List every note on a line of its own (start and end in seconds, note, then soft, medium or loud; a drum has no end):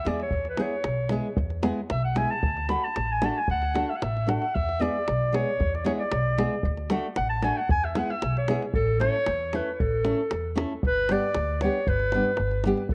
0.05 0.30 E2 medium
0.05 0.21 G#3 medium
0.05 0.21 B3 medium
0.05 0.22 E4 medium
0.05 0.22 G#4 medium
0.05 0.21 D5 medium
0.05 davul high medium
0.20 0.46 C#5 medium
0.20 davul high soft
0.30 0.64 E2 medium
0.30 davul low medium
0.45 davul high soft
0.49 0.63 B4 medium
0.57 0.74 G#3 medium
0.57 0.74 B3 medium
0.57 0.74 E4 medium
0.57 0.75 G#4 medium
0.57 davul high medium
0.61 1.13 C#5 medium
0.84 1.17 B1 medium
0.84 davul high medium
1.09 1.26 G#3 medium
1.09 1.27 B3 medium
1.09 1.27 E4 medium
1.09 1.27 G#4 medium
1.09 davul high medium
1.37 1.70 E2 medium
1.37 davul low loud
1.50 davul high soft
1.63 1.79 G#3 medium
1.63 1.79 B3 medium
1.63 1.80 E4 medium
1.63 1.80 G#4 medium
1.63 davul high medium
1.90 2.23 B1 loud
1.90 2.04 E5 loud
1.90 davul high medium
2.05 2.19 F#5 medium
2.15 2.32 G#3 medium
2.15 2.32 B3 medium
2.15 2.33 E4 medium
2.15 2.33 G#4 medium
2.15 2.32 G#5 medium
2.15 davul high medium
2.31 2.69 A5 loud
2.43 2.75 D2 medium
2.43 davul low loud
2.57 davul high soft
2.69 2.85 A3 medium
2.69 2.85 D4 medium
2.69 2.86 F#4 medium
2.69 2.86 A4 medium
2.69 2.86 B5 loud
2.69 davul high medium
2.84 3.14 A5 loud
2.96 3.29 A1 medium
2.96 davul high medium
3.12 3.27 G#5 loud
3.22 3.38 A3 medium
3.22 3.38 D4 medium
3.22 3.39 F#4 medium
3.22 3.39 A4 medium
3.22 3.40 A5 medium
3.22 davul high medium
3.38 3.50 G#5 loud
3.48 3.81 D2 medium
3.48 3.91 F#5 loud
3.48 davul low medium
3.62 davul high soft
3.74 3.91 A3 medium
3.74 3.91 D4 medium
3.74 3.91 F#4 medium
3.74 3.92 A4 medium
3.74 davul high medium
3.89 3.97 E5 medium
3.96 4.04 F#5 medium
4.02 4.34 A1 medium
4.02 4.30 E5 medium
4.02 davul high medium
4.17 davul high soft
4.26 4.43 A3 medium
4.26 4.43 D4 medium
4.26 4.44 F#4 medium
4.26 4.44 A4 medium
4.26 4.56 F#5 medium
4.26 davul high medium
4.42 davul high soft
4.55 4.87 E2 medium
4.55 4.83 E5 loud
4.55 davul low medium
4.69 davul high soft
4.79 4.96 G#3 medium
4.79 4.96 B3 medium
4.79 4.96 E4 medium
4.79 4.97 G#4 medium
4.79 5.36 D5 medium
4.79 davul high medium
5.08 5.40 B1 medium
5.08 davul high medium
5.32 5.49 G#3 medium
5.32 5.49 B3 medium
5.32 5.49 E4 medium
5.32 5.49 G#4 medium
5.32 5.76 C#5 medium
5.32 davul high medium
5.60 5.91 E2 medium
5.60 davul low medium
5.74 5.85 D5 medium
5.74 davul high soft
5.84 6.01 G#3 medium
5.84 6.01 B3 medium
5.84 6.02 E4 medium
5.84 6.02 G#4 medium
5.84 5.92 C#5 medium
5.84 davul high medium
5.99 6.74 D5 loud
6.11 6.44 B1 medium
6.11 davul high medium
6.37 6.54 G#3 medium
6.37 6.54 B3 medium
6.37 6.54 E4 medium
6.37 6.54 G#4 medium
6.37 davul high medium
6.63 6.97 D2 medium
6.63 davul low medium
6.77 davul high soft
6.90 7.06 A3 loud
6.90 7.06 D4 medium
6.90 7.07 F#4 medium
6.90 7.07 A4 medium
6.90 davul high medium
7.16 7.49 A1 loud
7.16 7.29 F#5 loud
7.16 davul high medium
7.29 7.42 A5 loud
7.42 7.58 A3 medium
7.42 7.59 D4 medium
7.42 7.59 F#4 medium
7.42 7.59 A4 medium
7.42 7.58 G#5 medium
7.42 davul high medium
7.57 7.70 F#5 medium
7.69 8.02 E2 medium
7.69 7.86 G#5 loud
7.69 davul low loud
7.84 7.99 E5 medium
7.84 davul high soft
7.95 8.11 G#3 medium
7.95 8.11 B3 medium
7.95 8.12 E4 medium
7.95 8.12 G#4 medium
7.95 8.12 F#5 loud
7.95 davul high medium
8.10 8.36 E5 loud
8.10 davul high soft
8.22 8.54 B1 medium
8.22 davul high medium
8.37 8.62 C#5 medium
8.37 davul high soft
8.48 8.64 G#3 medium
8.48 8.64 B3 medium
8.48 8.64 E4 medium
8.48 8.65 G#4 medium
8.48 davul high medium
8.62 davul high soft
8.74 9.07 A1 medium
8.74 8.99 A4 loud
8.74 davul low medium
9.00 9.16 A3 medium
9.00 9.16 C#4 medium
9.00 9.16 E4 medium
9.00 9.17 A4 medium
9.00 9.57 C#5 loud
9.00 davul high medium
9.26 9.59 E2 loud
9.26 davul high medium
9.53 9.68 A3 medium
9.53 9.69 C#4 medium
9.53 9.69 E4 medium
9.53 9.69 A4 medium
9.53 9.73 B4 medium
9.53 davul high medium
9.73 9.81 B4 medium
9.80 10.11 A1 medium
9.80 10.58 A4 loud
9.80 davul low medium
10.04 10.20 A3 medium
10.04 10.20 C#4 medium
10.04 10.21 E4 medium
10.04 10.21 A4 medium
10.04 davul high medium
10.31 10.64 E2 medium
10.31 davul high medium
10.56 10.72 A3 medium
10.56 10.72 C#4 medium
10.56 10.73 E4 medium
10.56 10.73 A4 medium
10.56 davul high medium
10.83 11.16 G1 medium
10.83 11.13 B4 loud
10.83 davul low loud
11.09 11.25 G3 medium
11.09 11.25 B3 medium
11.09 11.25 D4 medium
11.09 11.26 G4 medium
11.09 11.61 D5 loud
11.09 davul high medium
11.34 11.67 D2 loud
11.34 davul high medium
11.61 11.77 G3 medium
11.61 11.78 B3 medium
11.61 11.78 D4 medium
11.61 11.78 G4 medium
11.61 11.90 C#5 medium
11.61 davul high medium
11.87 12.19 G1 loud
11.87 12.66 B4 loud
11.87 davul low medium
11.99 davul high soft
12.12 12.29 G3 medium
12.12 12.29 B3 medium
12.12 12.30 D4 medium
12.12 12.30 G4 medium
12.12 davul high medium
12.37 12.71 G1 loud
12.37 davul high medium
12.51 davul high soft
12.64 12.81 G3 medium
12.64 12.81 B3 medium
12.64 12.82 D4 medium
12.64 12.82 G4 medium
12.64 davul high medium
12.78 davul high soft
12.89 12.94 A1 medium
12.89 12.94 A4 loud
12.89 davul low medium